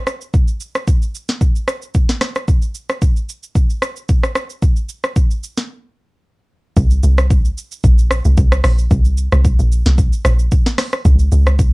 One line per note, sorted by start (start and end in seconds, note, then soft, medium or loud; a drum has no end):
0.07 cross-stick medium
0.07 shaker medium
0.21 shaker soft
0.34 kick loud
0.34 shaker medium
0.48 shaker medium
0.60 shaker medium
0.75 cross-stick medium
0.75 shaker soft
0.88 kick medium
0.88 shaker medium
1.02 shaker medium
1.15 shaker medium
1.29 snare medium
1.29 shaker medium
1.41 kick loud
1.41 shaker medium
1.56 shaker medium
1.68 cross-stick medium
1.68 shaker loud
1.82 shaker medium
1.95 kick medium
1.95 shaker medium
2.09 snare medium
2.09 shaker medium
2.21 cross-stick loud
2.21 snare medium
2.21 shaker medium
2.35 cross-stick medium
2.35 shaker soft
2.48 kick loud
2.48 shaker medium
2.62 shaker medium
2.75 shaker loud
2.89 cross-stick medium
2.89 shaker soft
3.02 kick loud
3.02 shaker medium
3.16 shaker medium
3.29 shaker medium
3.43 shaker medium
3.55 kick loud
3.55 shaker medium
3.70 shaker medium
3.82 cross-stick loud
3.82 shaker loud
3.96 shaker medium
4.09 kick medium
4.09 shaker medium
4.23 cross-stick medium
4.23 shaker medium
4.35 cross-stick loud
4.35 shaker medium
4.50 shaker soft
4.62 kick loud
4.62 shaker medium
4.76 shaker medium
4.89 shaker loud
5.04 cross-stick medium
5.04 shaker soft
5.16 kick loud
5.16 shaker medium
5.31 shaker medium
5.43 shaker medium
5.57 snare medium
5.57 shaker medium
6.77 7.01 C2 loud
6.77 kick loud
6.77 shaker medium
6.91 shaker medium
7.03 7.51 C2 loud
7.03 shaker loud
7.18 cross-stick medium
7.18 shaker soft
7.30 kick loud
7.30 shaker medium
7.45 shaker medium
7.58 shaker medium
7.72 shaker medium
7.84 8.21 A#1 loud
7.84 kick loud
7.84 shaker medium
7.98 shaker medium
8.11 cross-stick loud
8.11 shaker loud
8.25 8.36 C2 medium
8.25 shaker medium
8.37 8.62 C2 loud
8.37 kick loud
8.37 shaker medium
8.52 cross-stick loud
8.52 shaker medium
8.64 8.88 A#1 medium
8.64 cross-stick loud
8.64 open hi-hat medium
8.64 shaker medium
8.78 shaker soft
8.91 9.28 C2 loud
8.91 kick loud
8.91 shaker medium
9.05 shaker medium
9.18 shaker medium
9.32 9.56 C2 loud
9.32 cross-stick medium
9.32 shaker soft
9.45 kick loud
9.45 shaker medium
9.59 9.83 A#1 loud
9.59 shaker medium
9.72 shaker medium
9.86 10.10 C2 medium
9.86 snare medium
9.86 shaker medium
9.98 kick loud
9.98 shaker medium
10.13 shaker medium
10.25 10.49 A#1 loud
10.25 cross-stick loud
10.25 shaker loud
10.39 shaker medium
10.52 kick medium
10.52 shaker medium
10.66 snare medium
10.66 shaker medium
10.78 cross-stick loud
10.78 snare medium
10.78 open hi-hat medium
10.78 shaker medium
10.93 cross-stick medium
10.93 shaker soft
11.05 11.29 C#2 loud
11.05 kick loud
11.05 shaker medium
11.19 shaker medium
11.32 11.73 C#2 loud
11.32 shaker loud
11.47 cross-stick medium
11.47 shaker soft
11.59 kick loud
11.59 shaker medium